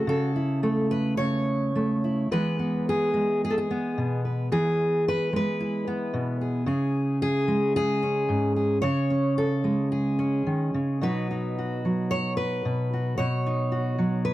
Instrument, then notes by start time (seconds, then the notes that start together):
steel-string acoustic guitar
Already playing: F#4
0.07 C#3 A4
0.36 E4
0.63 A3 A4
0.91 B4
1.17 C#3 C#5
1.76 A3
2.04 E4
2.31 E3 G#3 B3 B4
2.59 B3
2.89 G#4
3.14 G#3
3.45 G#4
3.50 A4
3.58 G#4
3.71 B3
3.98 B2
4.25 B4
4.52 E3 G#4
5.08 B4
5.33 G#3 B4
5.60 E4
5.88 B3
6.14 B2
6.41 G#4
6.66 C#3 G#4
7.22 G#4
7.48 G#3
7.76 G#4
8.03 C#4
8.29 G#2
8.56 G#4
8.82 C#3 C#5
9.10 C#4
9.38 A4
9.64 G#3
9.92 G#4
10.19 C#4
10.47 D#3
10.74 C#3
11.01 B2 F#3 D#4 F#4 B4
11.31 D#4
11.58 F#4
11.85 F#3
12.11 C#5
12.37 B4
12.65 B2
12.93 F#4
13.18 B2 C#5
13.46 D#4
13.72 F#4
13.98 F#3
14.25 B4